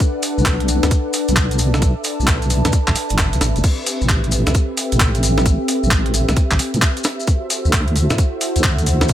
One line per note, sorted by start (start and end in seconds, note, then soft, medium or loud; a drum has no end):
0.00 5.12 D4 medium
0.00 3.60 A4 medium
0.00 5.12 B4 medium
0.00 7.23 B4 medium
0.00 3.60 D5 medium
0.00 1.15 E5 medium
0.00 1.57 F#5 medium
0.00 kick loud
0.00 closed hi-hat medium
0.00 maracas soft
0.23 open hi-hat loud
0.23 maracas medium
0.38 0.80 B1 medium
0.38 maracas soft
0.46 4.97 A5 medium
0.46 kick loud
0.46 clap loud
0.46 maracas soft
0.60 closed hi-hat soft
0.68 open hi-hat medium
0.68 maracas medium
0.83 0.90 D2 loud
0.83 snare medium
0.83 closed hi-hat medium
0.83 maracas soft
0.91 kick loud
0.91 closed hi-hat medium
0.91 maracas soft
1.13 open hi-hat loud
1.13 maracas medium
1.28 1.94 B1 loud
1.28 closed hi-hat medium
1.28 maracas soft
1.36 kick loud
1.36 clap loud
1.36 maracas soft
1.51 closed hi-hat medium
1.51 maracas soft
1.59 9.13 E5 medium
1.59 open hi-hat medium
1.59 maracas medium
1.74 snare medium
1.74 maracas soft
1.82 kick loud
1.82 closed hi-hat medium
1.82 maracas soft
2.04 open hi-hat loud
2.04 maracas medium
2.19 2.62 B1 loud
2.19 maracas soft
2.27 kick loud
2.27 clap loud
2.27 maracas medium
2.42 closed hi-hat soft
2.42 maracas soft
2.50 open hi-hat medium
2.50 maracas medium
2.65 2.72 D2 loud
2.65 snare medium
2.65 closed hi-hat medium
2.65 maracas soft
2.72 kick loud
2.72 closed hi-hat medium
2.72 maracas soft
2.88 2.95 B1 medium
2.88 kick medium
2.88 clap medium
2.95 open hi-hat loud
2.95 maracas medium
3.09 3.35 F#1 medium
3.09 closed hi-hat medium
3.09 maracas soft
3.18 kick loud
3.18 clap loud
3.18 snare soft
3.18 maracas soft
3.33 3.40 D2 loud
3.33 closed hi-hat medium
3.33 maracas soft
3.41 3.54 A1 loud
3.41 snare medium
3.41 open hi-hat medium
3.41 maracas medium
3.56 3.63 F#1 medium
3.56 closed hi-hat soft
3.56 maracas soft
3.64 8.61 C4 medium
3.64 7.24 C4 medium
3.64 7.24 G4 medium
3.64 kick loud
3.64 closed hi-hat medium
3.64 crash medium
3.64 maracas medium
3.87 open hi-hat loud
3.87 maracas medium
3.94 8.21 A4 medium
4.01 4.44 A1 loud
4.01 maracas soft
4.09 kick loud
4.09 clap loud
4.09 maracas soft
4.24 7.27 G5 medium
4.24 closed hi-hat soft
4.31 open hi-hat loud
4.31 maracas medium
4.47 4.54 C2 medium
4.47 snare medium
4.47 closed hi-hat medium
4.47 maracas soft
4.54 kick loud
4.54 closed hi-hat medium
4.54 maracas medium
4.77 open hi-hat loud
4.77 maracas medium
4.92 5.57 A1 loud
4.92 closed hi-hat medium
4.92 maracas soft
5.00 kick loud
5.00 clap loud
5.00 maracas soft
5.15 closed hi-hat medium
5.15 maracas soft
5.23 open hi-hat medium
5.23 maracas medium
5.38 snare medium
5.38 maracas soft
5.46 kick loud
5.46 closed hi-hat medium
5.46 maracas medium
5.68 open hi-hat loud
5.68 maracas medium
5.83 6.26 A1 loud
5.83 maracas soft
5.91 kick loud
5.91 clap loud
5.91 maracas soft
6.06 closed hi-hat soft
6.14 open hi-hat medium
6.14 maracas medium
6.28 6.36 C2 loud
6.28 snare medium
6.28 closed hi-hat medium
6.28 maracas soft
6.36 kick loud
6.36 closed hi-hat medium
6.36 maracas soft
6.51 6.58 A1 medium
6.51 kick medium
6.51 clap medium
6.59 open hi-hat loud
6.59 maracas loud
6.74 6.81 A2 medium
6.74 closed hi-hat medium
6.74 maracas soft
6.82 kick loud
6.82 clap loud
6.82 maracas medium
6.97 closed hi-hat soft
6.97 maracas soft
7.04 snare medium
7.04 open hi-hat medium
7.04 maracas medium
7.20 maracas soft
7.27 9.13 E4 medium
7.27 9.13 F#4 medium
7.27 9.13 A4 medium
7.27 9.13 C5 medium
7.27 kick loud
7.27 closed hi-hat medium
7.27 maracas soft
7.44 9.13 C5 medium
7.50 open hi-hat medium
7.50 maracas loud
7.65 8.08 D2 loud
7.65 maracas soft
7.73 kick loud
7.73 clap loud
7.73 maracas medium
7.82 9.13 F#5 medium
7.88 closed hi-hat soft
7.96 open hi-hat medium
7.96 maracas medium
8.10 8.17 F#2 medium
8.10 snare medium
8.10 closed hi-hat medium
8.10 maracas soft
8.18 kick loud
8.18 closed hi-hat medium
8.18 maracas medium
8.41 open hi-hat loud
8.41 maracas medium
8.56 9.13 D2 loud
8.56 closed hi-hat medium
8.56 maracas soft
8.64 kick loud
8.64 clap loud
8.79 closed hi-hat soft
8.79 maracas soft
8.86 open hi-hat medium
8.86 maracas medium
9.01 snare medium
9.01 maracas soft
9.08 kick loud
9.08 closed hi-hat medium
9.08 maracas soft